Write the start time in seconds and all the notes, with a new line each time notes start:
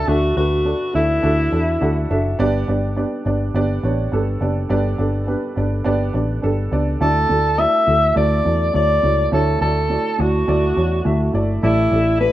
Already playing: D4 F#4 A4 D5 E5
0.07 D2 D3 D4 F#4 A4 E5
0.36 D2 D4 F#4 A4 B4
0.65 D4 F#4 A4 D5
0.94 D2 D4 E4 F#4 A4 E5
1.23 D2 D4 F#4 A4 E5
1.52 E2 D4 F#4 A4 E5
1.81 D2 D4 F#4 A4 F#5
2.10 F#1 D4 F#4 A4 E5
2.39 G1 G2 B3 D4 G4 D5
2.68 G1 B3 D4 G4 D5
2.96 B3 D4 G4 D5
3.25 G1 B3 D4 G4 D5
3.54 G1 B3 D4 G4 D5
3.83 A1 B3 D4 G4 C#5
4.12 G1 B3 D4 G4 A4
4.41 F#1 B3 D4 G4 D5
4.69 G1 G2 B3 D4 G4 D5
4.98 G1 B3 D4 G4 A4
5.27 B3 D4 G4 B4
5.56 G1 B3 D4 G4 D5
5.84 G1 B3 D4 G4 D5
6.14 A1 B3 D4 G4 D5
6.42 G1 B3 D4 G4 A4
6.71 C#2 B3 D4 G4 D5
7.01 D2 D3 A3 E4 F#4 A4 D5
7.29 D2 A3 E4 F#4 A4
7.58 A3 E4 F#4 D5 E5
7.87 D2 A3 E4 F#4 A4
8.16 D2 A3 E4 F#4 D5
8.45 E2 A3 E4 F#4 D5
8.74 D2 A3 E4 F#4 C#5 D5
9.03 C#2 A3 E4 F#4 C#5
9.32 D2 D3 A3 E4 F#4 A4 C#5
9.61 D2 A3 E4 F#4 A4 D5
9.90 A3 E4 F#4 D5
10.18 D2 A3 E4 F#4 D5
10.48 D2 A3 E4 F#4 D5
10.76 E2 A3 E4 F#4 C#5
11.05 D2 A3 E4 F#4 E5
11.34 G1 A3 E4 F#4 D5
11.63 A1 A2 A3 E4 G4 D5
11.92 A1 A3 E4 G4 A4
12.20 A3 E4 G4 B4 D5